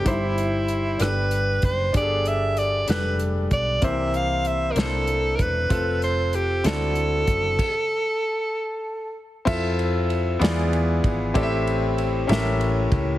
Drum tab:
CC |------|------|------|------|
RD |------|------|------|------|
HH |xxxxxx|xxxxxx|xxxxxx|xxxxxx|
SD |---r--|---o--|---o--|---o--|
BD |o----o|o----o|o----o|o----o|

CC |x-----|x-----|------|
RD |------|-xxxxx|xxxxxx|
HH |------|------|------|
SD |------|---o--|---o--|
BD |o-----|o----o|o----o|